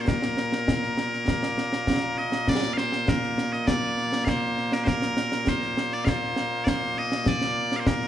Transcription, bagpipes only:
0, 0, Header, 1, 2, 480
1, 0, Start_track
1, 0, Key_signature, -2, "major"
1, 0, Tempo, 600000
1, 56, Time_signature, 4, 2, 24, 8
1, 6462, End_track
2, 0, Start_track
2, 0, Title_t, "Bagpipes"
2, 0, Program_c, 0, 109
2, 0, Note_on_c, 0, 46, 89
2, 0, Note_on_c, 0, 58, 89
2, 8, Note_on_c, 0, 72, 57
2, 70, Note_off_c, 0, 72, 0
2, 70, Note_on_c, 0, 70, 86
2, 1744, Note_off_c, 0, 70, 0
2, 1744, Note_on_c, 0, 75, 93
2, 1991, Note_off_c, 0, 75, 0
2, 1991, Note_on_c, 0, 74, 102
2, 2188, Note_off_c, 0, 74, 0
2, 2188, Note_on_c, 0, 77, 93
2, 2220, Note_off_c, 0, 77, 0
2, 2220, Note_on_c, 0, 72, 93
2, 2473, Note_off_c, 0, 72, 0
2, 2473, Note_on_c, 0, 70, 83
2, 2820, Note_off_c, 0, 70, 0
2, 2820, Note_on_c, 0, 75, 98
2, 2937, Note_off_c, 0, 75, 0
2, 2937, Note_on_c, 0, 74, 91
2, 3398, Note_off_c, 0, 74, 0
2, 3398, Note_on_c, 0, 77, 94
2, 3429, Note_off_c, 0, 77, 0
2, 3429, Note_on_c, 0, 72, 94
2, 3789, Note_off_c, 0, 72, 0
2, 3789, Note_on_c, 0, 70, 80
2, 3875, Note_off_c, 0, 70, 0
2, 3876, Note_on_c, 0, 72, 100
2, 3903, Note_off_c, 0, 72, 0
2, 3903, Note_on_c, 0, 70, 100
2, 4391, Note_off_c, 0, 70, 0
2, 4391, Note_on_c, 0, 72, 92
2, 4745, Note_off_c, 0, 72, 0
2, 4745, Note_on_c, 0, 74, 91
2, 4838, Note_off_c, 0, 74, 0
2, 4838, Note_on_c, 0, 77, 90
2, 4869, Note_off_c, 0, 77, 0
2, 4869, Note_on_c, 0, 72, 90
2, 5315, Note_off_c, 0, 72, 0
2, 5315, Note_on_c, 0, 74, 98
2, 5348, Note_off_c, 0, 74, 0
2, 5348, Note_on_c, 0, 72, 98
2, 5584, Note_off_c, 0, 72, 0
2, 5584, Note_on_c, 0, 75, 94
2, 5822, Note_off_c, 0, 75, 0
2, 5822, Note_on_c, 0, 74, 105
2, 6211, Note_off_c, 0, 74, 0
2, 6211, Note_on_c, 0, 77, 68
2, 6238, Note_off_c, 0, 77, 0
2, 6238, Note_on_c, 0, 72, 68
2, 6298, Note_off_c, 0, 72, 0
2, 6298, Note_on_c, 0, 70, 99
2, 6462, Note_off_c, 0, 46, 0
2, 6462, Note_off_c, 0, 58, 0
2, 6462, Note_off_c, 0, 70, 0
2, 6462, End_track
0, 0, End_of_file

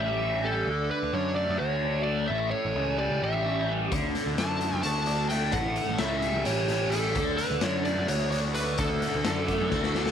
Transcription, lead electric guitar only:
0, 0, Header, 1, 2, 480
1, 0, Start_track
1, 0, Tempo, 464037
1, 696, Time_signature, 7, 3, 24, 8
1, 10462, End_track
2, 0, Start_track
2, 0, Title_t, "Lead electric guitar"
2, 0, Program_c, 0, 29
2, 0, Note_on_c, 0, 76, 102
2, 461, Note_on_c, 0, 69, 94
2, 473, Note_off_c, 0, 76, 0
2, 933, Note_off_c, 0, 69, 0
2, 937, Note_on_c, 0, 71, 87
2, 1174, Note_on_c, 0, 73, 95
2, 1183, Note_off_c, 0, 71, 0
2, 1398, Note_off_c, 0, 73, 0
2, 1405, Note_on_c, 0, 74, 96
2, 1639, Note_off_c, 0, 74, 0
2, 1643, Note_on_c, 0, 73, 100
2, 2098, Note_off_c, 0, 73, 0
2, 2102, Note_on_c, 0, 74, 87
2, 2349, Note_off_c, 0, 74, 0
2, 2353, Note_on_c, 0, 76, 98
2, 2590, Note_off_c, 0, 76, 0
2, 2594, Note_on_c, 0, 73, 90
2, 3087, Note_off_c, 0, 73, 0
2, 3091, Note_on_c, 0, 74, 82
2, 3340, Note_off_c, 0, 74, 0
2, 3345, Note_on_c, 0, 76, 85
2, 3842, Note_off_c, 0, 76, 0
2, 4542, Note_on_c, 0, 81, 110
2, 4986, Note_off_c, 0, 81, 0
2, 4999, Note_on_c, 0, 81, 100
2, 5452, Note_off_c, 0, 81, 0
2, 5475, Note_on_c, 0, 79, 89
2, 5715, Note_off_c, 0, 79, 0
2, 5719, Note_on_c, 0, 78, 109
2, 6173, Note_off_c, 0, 78, 0
2, 6195, Note_on_c, 0, 76, 94
2, 6676, Note_off_c, 0, 76, 0
2, 6680, Note_on_c, 0, 73, 93
2, 7138, Note_on_c, 0, 69, 85
2, 7182, Note_off_c, 0, 73, 0
2, 7619, Note_off_c, 0, 69, 0
2, 7623, Note_on_c, 0, 71, 86
2, 7882, Note_on_c, 0, 73, 95
2, 7887, Note_off_c, 0, 71, 0
2, 8114, Note_off_c, 0, 73, 0
2, 8118, Note_on_c, 0, 74, 87
2, 8359, Note_off_c, 0, 74, 0
2, 8363, Note_on_c, 0, 73, 90
2, 8588, Note_off_c, 0, 73, 0
2, 8600, Note_on_c, 0, 73, 87
2, 8667, Note_off_c, 0, 73, 0
2, 8839, Note_on_c, 0, 71, 80
2, 9092, Note_off_c, 0, 71, 0
2, 9096, Note_on_c, 0, 69, 81
2, 10462, Note_off_c, 0, 69, 0
2, 10462, End_track
0, 0, End_of_file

